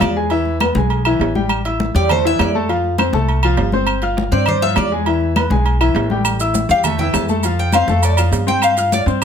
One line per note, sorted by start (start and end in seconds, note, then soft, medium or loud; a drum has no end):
0.00 0.70 E2 medium
0.00 0.11 F3 medium
0.00 0.11 F4 medium
0.00 0.16 D5 medium
0.00 0.11 F5 medium
0.00 high conga medium
0.00 low timbale medium
0.00 low agogo loud
0.00 claves medium
0.16 0.28 G#3 medium
0.16 0.29 G#4 medium
0.16 0.29 G#5 medium
0.30 0.56 E3 medium
0.30 0.56 E4 medium
0.30 0.56 E5 loud
0.30 low agogo medium
0.45 high conga soft
0.60 0.73 B3 medium
0.60 0.74 B4 medium
0.60 0.74 B5 medium
0.60 high conga loud
0.60 low timbale medium
0.60 low agogo loud
0.60 claves medium
0.75 1.17 B1 loud
0.75 1.01 G#3 medium
0.75 1.01 G#4 medium
0.75 1.01 G#5 medium
0.75 high conga medium
0.90 high conga soft
0.90 low agogo medium
1.05 1.30 E3 medium
1.05 1.30 E4 medium
1.05 1.30 E5 medium
1.05 high conga soft
1.05 low agogo loud
1.05 claves medium
1.19 1.89 A1 medium
1.19 high conga soft
1.19 low timbale medium
1.19 low agogo medium
1.35 1.60 G3 medium
1.35 1.60 G4 medium
1.35 1.60 G5 medium
1.35 high conga medium
1.49 high conga soft
1.49 low agogo loud
1.49 claves medium
1.65 1.90 E4 medium
1.65 1.90 E5 medium
1.65 1.90 E6 medium
1.65 high conga soft
1.65 low agogo medium
1.80 high conga loud
1.80 low timbale medium
1.95 2.36 E2 loud
1.95 2.07 G3 medium
1.95 2.07 G4 medium
1.95 2.10 D5 loud
1.95 2.08 G5 medium
1.95 high conga soft
2.09 2.22 A3 medium
2.09 2.22 A4 medium
2.09 2.25 C5 medium
2.09 2.23 A5 medium
2.09 high conga soft
2.09 low conga medium
2.09 low agogo loud
2.09 claves medium
2.25 2.49 E3 medium
2.25 2.49 E4 medium
2.25 2.49 E5 medium
2.25 2.40 E5 loud
2.25 high conga soft
2.39 3.08 F2 medium
2.39 2.55 D5 medium
2.39 high conga medium
2.39 low timbale medium
2.39 low agogo loud
2.39 claves medium
2.55 2.67 A3 medium
2.55 2.67 A4 medium
2.55 2.67 A5 medium
2.69 2.93 F3 medium
2.69 2.94 F4 medium
2.69 2.94 F5 medium
2.69 high conga soft
2.69 low agogo medium
2.84 high conga soft
2.98 3.11 C4 medium
2.98 3.11 C5 medium
2.98 3.11 C6 medium
2.98 high conga loud
2.98 low timbale medium
2.98 low agogo loud
2.98 claves medium
3.13 3.55 C2 loud
3.13 3.38 A3 medium
3.13 3.38 A4 medium
3.13 3.38 A5 medium
3.13 high conga loud
3.29 high conga soft
3.29 low agogo medium
3.43 3.68 F3 medium
3.43 3.68 F4 loud
3.43 3.68 F5 medium
3.43 high conga soft
3.43 low agogo loud
3.43 claves medium
3.57 4.27 G1 medium
3.57 high conga soft
3.57 low timbale medium
3.57 low agogo medium
3.72 3.97 C4 medium
3.72 3.98 C5 medium
3.72 3.98 C6 medium
3.72 high conga medium
3.87 high conga soft
3.87 low agogo loud
3.87 claves medium
4.02 4.27 F4 medium
4.02 4.27 F5 medium
4.02 4.27 F6 medium
4.02 high conga soft
4.02 low agogo medium
4.17 high conga loud
4.17 low timbale medium
4.32 4.73 G2 medium
4.32 4.44 C4 medium
4.32 4.44 C5 medium
4.32 4.47 D5 medium
4.32 4.45 C6 medium
4.32 high conga soft
4.46 4.59 D4 medium
4.46 4.62 C5 medium
4.46 4.60 D5 medium
4.46 4.60 D6 medium
4.46 high conga soft
4.46 low conga medium
4.46 low agogo loud
4.46 claves medium
4.62 4.86 F3 medium
4.62 4.87 F4 medium
4.62 4.77 E5 loud
4.62 4.87 F5 medium
4.62 high conga soft
4.76 5.45 E2 medium
4.76 4.92 D5 medium
4.76 high conga medium
4.76 low timbale medium
4.76 low agogo loud
4.76 claves medium
4.92 5.04 G#3 medium
4.92 5.04 G#4 medium
4.92 5.04 G#5 medium
5.06 5.31 E3 medium
5.06 5.31 E4 medium
5.06 5.31 E5 medium
5.06 high conga soft
5.06 low agogo medium
5.20 high conga soft
5.36 5.49 B3 medium
5.36 5.49 B4 medium
5.36 5.49 B5 medium
5.36 high conga loud
5.36 low timbale medium
5.36 low agogo loud
5.36 claves medium
5.50 5.92 B1 loud
5.50 5.75 G#3 medium
5.50 5.75 G#4 medium
5.50 5.76 G#5 medium
5.50 high conga medium
5.66 high conga soft
5.66 low agogo medium
5.80 6.05 E3 medium
5.80 6.05 E4 medium
5.80 6.05 E5 medium
5.80 high conga soft
5.80 low agogo loud
5.80 claves medium
5.94 6.64 A1 loud
5.94 high conga soft
5.94 low timbale medium
5.94 low agogo medium
6.10 6.35 G3 medium
6.10 6.35 G4 medium
6.10 6.35 G5 medium
6.10 high conga medium
6.25 low agogo loud
6.25 claves medium
6.25 maracas medium
6.40 6.65 E4 medium
6.40 6.65 E5 medium
6.40 6.65 E6 medium
6.40 high conga soft
6.40 low agogo medium
6.40 maracas medium
6.54 high conga loud
6.54 low timbale medium
6.54 maracas medium
6.69 7.11 E2 loud
6.69 6.82 G3 medium
6.69 6.83 G4 medium
6.69 6.84 F5 loud
6.69 6.83 G5 medium
6.69 high conga soft
6.69 maracas soft
6.84 6.97 A3 medium
6.84 6.97 A4 medium
6.84 6.99 E5 medium
6.84 6.97 A5 medium
6.84 high conga soft
6.84 low conga medium
6.84 low agogo loud
6.84 claves medium
6.84 maracas medium
6.99 7.24 E3 medium
6.99 7.24 E4 medium
6.99 7.25 E5 medium
6.99 7.14 G5 loud
6.99 high conga soft
6.99 low conga medium
7.14 7.83 F2 loud
7.14 7.24 A5 medium
7.14 high conga medium
7.14 low timbale medium
7.14 low agogo loud
7.14 claves medium
7.14 maracas medium
7.29 7.41 A3 medium
7.29 7.42 A4 medium
7.29 7.42 A5 medium
7.29 high conga medium
7.29 maracas soft
7.43 7.69 F3 medium
7.43 7.69 F4 medium
7.43 7.69 F5 medium
7.43 high conga soft
7.43 low agogo medium
7.43 maracas medium
7.58 7.74 G5 loud
7.58 high conga soft
7.72 7.86 C4 medium
7.72 7.86 C5 medium
7.72 8.02 F5 loud
7.72 7.87 C6 medium
7.72 high conga loud
7.72 low timbale medium
7.72 low agogo loud
7.72 claves medium
7.72 maracas medium
7.88 8.29 F2 loud
7.88 8.13 A3 medium
7.88 8.14 A4 medium
7.88 8.14 A5 medium
7.88 high conga medium
7.88 maracas soft
8.03 8.18 D5 medium
8.03 high conga soft
8.03 low agogo medium
8.03 maracas medium
8.17 8.43 F3 medium
8.17 8.43 F4 medium
8.17 8.43 F5 medium
8.17 high conga soft
8.17 low agogo loud
8.17 claves medium
8.17 maracas medium
8.32 9.01 G2 medium
8.32 high conga soft
8.32 low timbale medium
8.32 low agogo medium
8.32 maracas medium
8.47 8.72 C4 medium
8.47 8.72 C5 medium
8.47 8.62 G5 loud
8.47 8.72 C6 medium
8.47 high conga medium
8.47 maracas soft
8.62 8.91 F5 medium
8.62 high conga soft
8.62 low agogo loud
8.62 claves medium
8.62 maracas medium
8.77 9.02 F4 medium
8.77 9.02 F5 medium
8.77 9.02 F6 medium
8.77 high conga soft
8.77 low agogo medium
8.77 maracas medium
8.92 9.02 D5 loud
8.92 high conga loud
8.92 low timbale medium
8.92 maracas medium
9.06 9.24 G2 loud
9.06 9.19 C4 medium
9.06 9.19 C5 medium
9.06 9.20 C6 medium
9.06 high conga soft
9.06 maracas soft